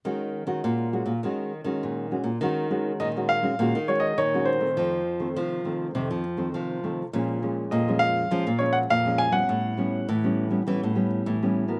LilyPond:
<<
  \new Staff \with { instrumentName = "Grand piano" } { \time 4/4 \key ees \minor \tempo 4 = 102 r1 | r4 ees''8 f''4 des''16 ees''16 des''8 c''8~ | c''2~ c''8 r4. | r4 ees''8 f''4 des''16 ges''16 f''8 aes''16 ges''16~ |
ges''2~ ges''8. r4 r16 | }
  \new Staff \with { instrumentName = "Nylon-string guitar" } { \time 4/4 \key ees \minor << { <aes des' ges'>8. <aes des' ges'>8. <aes des' ges'>16 r16 <aes des' ges'>8 r16 <aes des' ges'>8. <aes des' ges'>16 r16 | <aes des' ges'>8 <aes des' ges'>8. <aes des' ges'>8 <aes des' ges'>16 <aes des' ges'>16 r16 <aes des' ges'>8 r16 <aes des' ges'>8 <ees a c'>16~ | <ees a c'>8 r16 <ees a c'>8. <ees a c'>8 <ees a c'>8 r16 <ees a c'>8. <ees a c'>16 r16 | <f aes des'>8 <f aes des'>8. <f aes des'>8. <f aes des'>16 r16 <f aes des'>8 r16 <f aes des'>8 <g ces' des'>16~ |
<g ces' des'>8 <g b cis'>8 r16 <g b cis'>8 <g b cis'>16 <g b cis'>8 <g b cis'>8. <g b cis'>8 <b ges' bes'>16 | } \\ { ees4 bes,4 ees4 bes,4 | ees4 bes,4 ees4 bes,4 | f,4 c4 f,4 c4 | bes,4 f,4 bes,4 f,4 |
a,4 e4 a,4 e4 | } >> }
  \new Staff \with { instrumentName = "Nylon-string guitar" } { \clef bass \time 4/4 \key ees \minor ees8. ees16 bes,8. bes,16 ees8. ees4 bes,16 | ees4 ees4 bes,16 ees8. ees4 | f4 f4 c16 f8. f4 | bes,4 bes,4 f16 bes,8. bes,4 |
a,4 a,4 e16 a,8. a,4 | }
>>